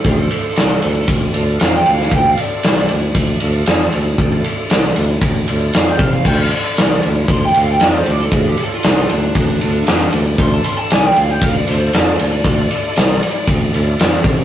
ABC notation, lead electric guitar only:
X:1
M:4/4
L:1/16
Q:1/4=116
K:Dm
V:1 name="Lead electric guitar"
A8 z4 f g f f | g f d4 z8 z2 | z12 f g f f | g f d4 z2 c' g f g d c d A |
^G =G A F D F D8 z2 | c' a c' a ^g =g f g f d c2 d4- | d8 z8 |]